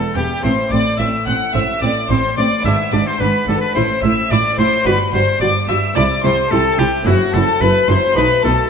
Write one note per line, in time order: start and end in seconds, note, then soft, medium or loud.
0.00 0.14 E2 medium
0.00 0.39 B3 medium
0.00 0.40 E4 medium
0.00 0.16 A4 medium
0.00 0.16 A4 loud
0.15 0.24 E1 medium
0.15 0.24 E2 medium
0.15 0.41 E2 medium
0.15 0.24 B3 medium
0.15 0.43 G4 medium
0.15 0.23 G5 loud
0.39 2.59 A3 medium
0.39 2.59 C4 medium
0.39 2.60 E4 medium
0.39 0.70 C6 loud
0.43 0.52 A1 medium
0.43 0.68 A2 medium
0.43 0.52 A2 medium
0.43 0.52 C4 medium
0.43 0.71 C5 medium
0.43 0.73 C5 loud
0.71 0.79 A1 medium
0.71 0.79 A2 medium
0.71 0.96 A2 medium
0.71 0.80 C4 medium
0.71 0.98 D5 loud
0.71 0.99 D5 medium
0.71 0.98 D6 loud
0.99 1.07 A1 medium
0.99 1.24 A2 medium
0.99 1.07 A2 medium
0.99 1.07 C4 medium
0.99 1.07 E5 medium
0.99 1.26 E5 medium
0.99 1.26 E6 loud
1.26 1.35 A1 medium
1.26 1.52 A2 medium
1.26 1.35 A2 medium
1.26 1.35 C4 medium
1.26 1.53 F#5 medium
1.26 1.54 F#5 loud
1.26 1.34 F#6 loud
1.53 1.62 A1 medium
1.53 1.79 A2 medium
1.53 1.63 A2 medium
1.53 1.62 C4 medium
1.53 1.81 E5 loud
1.53 1.82 E5 medium
1.53 1.81 E6 loud
1.81 1.90 A1 medium
1.81 1.90 A2 medium
1.81 2.07 A2 medium
1.81 1.91 C4 medium
1.81 1.94 D5 medium
1.81 2.09 D5 medium
1.81 2.09 D6 loud
2.09 2.18 A1 medium
2.09 2.17 A2 medium
2.09 2.35 A2 medium
2.09 2.18 C4 medium
2.09 2.36 C5 medium
2.09 2.37 C5 medium
2.09 2.38 C6 loud
2.37 2.45 A1 medium
2.37 2.62 A2 medium
2.37 2.46 A2 medium
2.37 2.46 C4 medium
2.37 2.64 D5 loud
2.37 2.65 D5 loud
2.37 2.65 D6 loud
2.60 3.69 B3 medium
2.60 3.70 D4 medium
2.60 3.71 E4 medium
2.65 2.73 G#1 medium
2.65 2.90 G#2 medium
2.65 2.73 G#2 medium
2.65 2.73 D4 medium
2.65 2.77 E5 medium
2.65 2.92 E5 medium
2.65 2.93 E6 loud
2.92 3.00 G#1 medium
2.92 3.17 G#2 medium
2.92 3.00 G#2 medium
2.92 3.01 D4 medium
2.92 3.06 D5 loud
2.92 3.08 D5 medium
2.92 3.07 D6 loud
3.06 3.20 C5 medium
3.06 3.21 C5 medium
3.06 3.21 C6 loud
3.20 3.28 G#1 medium
3.20 3.45 G#2 medium
3.20 3.28 G#2 medium
3.20 3.28 D4 medium
3.20 3.47 B4 loud
3.20 3.48 B4 medium
3.20 3.47 B5 loud
3.47 3.55 G#1 medium
3.47 3.72 G#2 medium
3.47 3.56 G#2 medium
3.47 3.56 D4 medium
3.47 3.61 A4 medium
3.47 3.60 A4 medium
3.47 3.54 A5 loud
3.61 3.75 B4 loud
3.61 3.74 B4 medium
3.61 3.76 B5 loud
3.71 3.83 A1 medium
3.71 3.83 A2 medium
3.71 4.80 C4 medium
3.71 4.81 E4 medium
3.71 4.02 C5 medium
3.71 4.02 C5 loud
3.75 4.00 A2 medium
3.75 3.83 E4 medium
3.75 4.03 C6 loud
4.02 4.10 A1 medium
4.02 4.11 A2 medium
4.02 4.28 A2 medium
4.02 4.11 E4 medium
4.02 4.30 E5 medium
4.02 4.32 E5 loud
4.02 4.30 E6 loud
4.30 4.38 A1 medium
4.30 4.38 A2 medium
4.30 4.55 A2 medium
4.30 4.39 E4 medium
4.30 4.58 D5 loud
4.30 4.39 D6 loud
4.57 4.66 A1 medium
4.57 4.83 A2 medium
4.57 4.66 A2 medium
4.57 4.66 E4 medium
4.57 4.85 C5 loud
4.57 4.85 C6 loud
4.82 4.93 G1 medium
4.82 5.10 G2 medium
4.82 4.94 G2 medium
4.82 5.91 D4 medium
4.82 5.92 F#4 medium
4.82 5.13 B4 loud
4.86 4.94 F#4 medium
4.86 4.98 B4 loud
4.86 5.13 B5 loud
5.13 5.21 G1 medium
5.13 5.38 G2 medium
5.13 5.21 G2 medium
5.13 5.21 F#4 medium
5.13 5.40 C5 loud
5.13 5.40 C6 loud
5.41 5.49 G1 medium
5.41 5.66 G2 medium
5.41 5.49 G2 medium
5.41 5.49 F#4 medium
5.41 5.53 D5 medium
5.41 5.49 D5 loud
5.41 5.68 D6 loud
5.68 5.76 G1 medium
5.68 5.76 G2 medium
5.68 5.93 G2 medium
5.68 5.77 F#4 medium
5.68 5.95 E5 loud
5.68 5.77 E5 loud
5.68 5.96 E6 loud
5.93 6.04 C2 medium
5.93 6.04 C3 medium
5.93 6.21 C3 medium
5.93 7.02 C4 medium
5.93 7.02 E4 medium
5.93 6.04 E4 medium
5.93 6.23 D5 loud
5.93 6.04 D5 loud
5.93 6.24 D6 loud
6.23 6.32 C2 medium
6.23 6.32 C3 medium
6.23 6.49 C3 medium
6.23 6.31 E4 medium
6.23 6.51 C5 loud
6.23 6.53 C5 loud
6.23 6.52 C6 loud
6.51 6.59 C2 medium
6.51 6.76 C3 medium
6.51 6.60 C3 medium
6.51 6.59 E4 medium
6.51 6.78 A4 loud
6.51 6.80 A4 loud
6.51 6.79 A5 loud
6.78 6.87 C2 medium
6.78 7.03 C3 medium
6.78 6.87 C3 medium
6.78 6.87 E4 medium
6.78 6.86 G4 medium
6.78 7.08 G4 loud
6.78 7.06 G5 loud
7.02 8.10 A3 medium
7.02 8.11 C4 medium
7.02 8.12 E4 medium
7.06 7.14 F#1 loud
7.06 7.31 F#2 medium
7.06 7.14 F#2 loud
7.06 7.14 E4 medium
7.06 7.33 F#4 loud
7.06 7.35 F#4 loud
7.06 7.33 F#5 loud
7.33 7.42 F#1 loud
7.33 7.58 F#2 medium
7.33 7.42 F#2 loud
7.33 7.42 E4 medium
7.33 7.61 A4 loud
7.33 7.62 A4 loud
7.33 7.61 A5 loud
7.61 7.69 F#1 medium
7.61 7.69 F#2 medium
7.61 7.86 F#2 medium
7.61 7.69 E4 medium
7.61 7.90 B4 loud
7.61 7.89 B4 loud
7.61 7.89 B5 loud
7.88 7.97 F#1 medium
7.88 8.13 F#2 medium
7.88 7.96 F#2 medium
7.88 7.97 E4 medium
7.88 8.16 C5 loud
7.88 8.17 C6 loud
8.11 8.70 A3 medium
8.11 8.70 B3 medium
8.11 8.70 D#4 medium
8.16 8.24 B1 loud
8.16 8.41 B2 medium
8.16 8.24 B2 medium
8.16 8.24 D#4 medium
8.16 8.43 B4 loud
8.16 8.44 B5 loud
8.43 8.52 B1 medium
8.43 8.69 B2 medium
8.43 8.52 B2 medium
8.43 8.51 D#4 medium
8.43 8.70 A4 medium
8.43 8.70 A4 loud
8.43 8.70 A5 loud